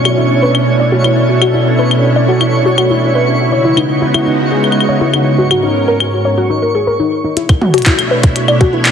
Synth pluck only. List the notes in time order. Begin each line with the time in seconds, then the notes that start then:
0.05 F#4
0.18 E4
0.42 B4
0.80 D5
0.92 F#4
1.04 E4
1.29 F#4
1.42 F#4
1.54 E4
1.79 B4
2.16 D5
2.28 F#4
2.41 E4
2.66 F#4
2.78 F#4
2.90 E4
3.15 B4
3.52 C#5
3.65 E4
3.77 D#4
4.02 E4
4.14 E4
4.27 D#4
4.52 G#4
4.89 C#5
5.01 E4
5.14 D#4
5.38 F#4
5.51 F#4
5.63 D#4
5.88 A#4
6.25 C#5
6.38 F#4
6.50 D#4
6.62 A#4
6.75 G#4
6.87 A#4
7.00 D#4
7.24 D#4
7.37 E4
7.62 F#4
7.74 F#4
7.86 E4
8.11 B4
8.48 D5
8.61 F#4
8.73 E4